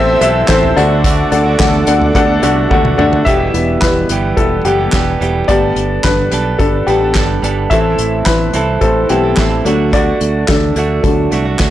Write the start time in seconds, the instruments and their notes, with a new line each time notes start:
Already playing: fingered electric bass A1, upright piano A2 C4 A4 E5, clean electric guitar C4 E4 A4, analog synth pad C5 E5 A5 E6
0.20 fingered electric bass B1, clean electric guitar E3 C4 E4 A4, upright piano C4 A4 E5, closed hi-hat
0.48 fingered electric bass A1, clean electric guitar E3 C4 E4 A4, upright piano C4 A4 C5, kick, snare, clap, closed hi-hat
0.63 floor tom
0.76 fingered electric bass D2, clean electric guitar D3 A3 D4 F#4, upright piano D3 D4 A4 F#5, analog synth pad A4 D5 F#5 D6, closed hi-hat
1.04 clean electric guitar D3 A3 D4 F#4, kick, closed hi-hat
1.32 fingered electric bass D2, upright piano D4 A4 F#5, closed hi-hat
1.46 clean electric guitar A3 D4 F#4
1.59 fingered electric bass D2, upright piano D4 A4 F#5, kick, snare, clap, closed hi-hat
1.87 fingered electric bass D2, upright piano D4 A4 F#5, closed hi-hat
2.02 floor tom
2.15 fingered electric bass D2, upright piano D4 A4 F#5, kick, closed hi-hat
2.42 fingered electric bass C2, clean electric guitar D3 A3 D4 F#4, upright piano D4 A4 F#5, closed hi-hat
2.70 fingered electric bass D2, clean electric guitar D3 A3 D4 F#4, upright piano D4 A4 F#5, kick, high tom
2.85 mid tom
2.98 fingered electric bass D2, clean electric guitar D3 A3 D4 F#4, upright piano D4 A4 F#5, mid tom
3.13 floor tom
3.25 fingered electric bass E1, clean electric guitar E2 B2 E3 G3 B3 G4, upright piano G4 E5, kick, closed hi-hat
3.53 fingered electric bass E1, upright piano E3 G3 B3, closed hi-hat
3.81 fingered electric bass E1, upright piano E4 B4, kick, snare, clap, closed hi-hat
4.09 fingered electric bass G1, clean electric guitar E3 G3 B3 G4, closed hi-hat
4.37 fingered electric bass E1, upright piano E4 A4, kick, closed hi-hat
4.65 fingered electric bass F#1, clean electric guitar E3 G3 B3 G4, upright piano B3 G4, closed hi-hat
4.78 clean electric guitar E3 G3 B3 G4
4.92 fingered electric bass E1, clean electric guitar E3 G3 B3 G4, kick, snare, clap, closed hi-hat
5.20 fingered electric bass E1, clean electric guitar E3 G3 B3 G4, closed hi-hat
5.48 fingered electric bass G1, clean electric guitar G3 B3 D4 A4, upright piano G3 A3 B3 G4 D5, kick, closed hi-hat
5.76 fingered electric bass G1, closed hi-hat
6.03 fingered electric bass G1, upright piano D4 B4, kick, snare, clap, closed hi-hat
6.31 fingered electric bass B1, clean electric guitar G3 B3 D4 A4, closed hi-hat
6.59 fingered electric bass G1, upright piano D4 A4, kick, closed hi-hat
6.87 fingered electric bass A1, clean electric guitar G3 B3 D4 A4, upright piano B3 G4, closed hi-hat
7.01 clean electric guitar B3 D4 A4
7.15 fingered electric bass G1, clean electric guitar G3 B3 D4 A4, kick, snare, clap, closed hi-hat
7.42 fingered electric bass G1, clean electric guitar G3 B3 D4 A4, closed hi-hat
7.70 fingered electric bass A1, clean electric guitar A2 E3 C4 E4 A4, upright piano E3 A3 C4 A4 E5, kick, closed hi-hat
7.98 fingered electric bass A1, closed hi-hat
8.25 fingered electric bass A1, upright piano E4 B4, kick, snare, clap, closed hi-hat
8.53 fingered electric bass C2, clean electric guitar E3 C4 E4 A4, closed hi-hat
8.81 fingered electric bass A1, upright piano C4 A4, kick, closed hi-hat
9.09 fingered electric bass B1, clean electric guitar E3 C4 E4 A4, upright piano E3 A3 B3 C4 G4, closed hi-hat
9.23 clean electric guitar C4 E4 A4
9.37 fingered electric bass A1, clean electric guitar E3 C4 E4 A4, kick, snare, clap, closed hi-hat
9.65 fingered electric bass D2, clean electric guitar D3 A3 D4 F#4, upright piano F#3 A3 D4, closed hi-hat
9.93 clean electric guitar D3 A3 D4 F#4, upright piano F#4 D5, kick, closed hi-hat
10.21 fingered electric bass D2, closed hi-hat
10.48 fingered electric bass D2, upright piano D4 A4, kick, snare, clap, closed hi-hat
10.76 fingered electric bass D2, clean electric guitar D3 A3 D4 F#4, closed hi-hat
11.03 fingered electric bass D2, upright piano F#3 A3 D4 A4, kick, closed hi-hat
11.31 fingered electric bass C2, clean electric guitar D3 A3 D4 F#4, closed hi-hat
11.45 clean electric guitar A3 D4 F#4
11.59 fingered electric bass D2, clean electric guitar D3 A3 D4 F#4, kick, snare, clap, closed hi-hat